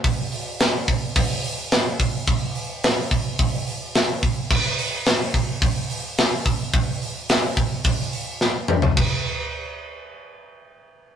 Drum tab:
CC |----------------|----------------|x---------------|----------------|
HH |o-o-o-o-o-o-o-o-|o-o-o-o-o-o-o-o-|--o-o-o-o-o-o-o-|o-o-o-o-o-o-----|
SD |----o-------o---|----o-------o---|----o-------o---|----o-------o---|
T2 |----------------|----------------|----------------|--------------o-|
FT |----------------|----------------|----------------|---------------o|
BD |o-----o-o-----o-|o-----o-o-----o-|o-----o-o-----o-|o-----o-o-------|

CC |x---------------|
HH |----------------|
SD |----------------|
T2 |----------------|
FT |----------------|
BD |o---------------|